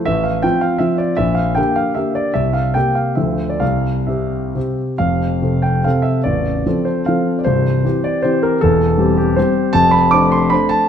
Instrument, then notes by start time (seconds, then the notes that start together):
grand piano
0.05 A1 E5
0.23 F5
0.42 F3 C4 F4 G5
0.61 F5
0.78 F3 C4 F4 E5
0.98 D5
1.17 A#1 E5
1.35 F5
1.55 D3 A#3 G4 G5
1.76 F5
1.95 D3 A#3 G4 E5
2.15 D5
2.34 C2 E5
2.53 F5
2.74 C3 A#3 G4 G5
2.95 F5
3.15 D2 F3 A3 F4 E5
3.49 D5
3.60 C2 F5
4.07 C3 C4 G4 E5
4.55 C3 C4 G4
4.98 F1 F2 F5
5.42 C3 C4 A4
5.62 G5
5.84 C3 C4 A4 F5
6.02 E5
6.24 A0 A1 D5
6.66 F3 C4 A4
6.85 C5
7.06 F3 C4 A4 F5
7.39 D5
7.45 C1 C2 C5
7.84 E3 C4 G4
8.04 D5
8.22 E3 C4 G4 C5
8.43 A#4
8.61 E1 E2 A4
8.98 G3 C4 G4
9.17 G4
9.36 G3 C4 G4 C5
9.73 F1 F2 A5
9.91 B5
10.11 A3 D4 C5 D6
10.32 C6
10.50 A3 D4 C5 B5
10.69 A5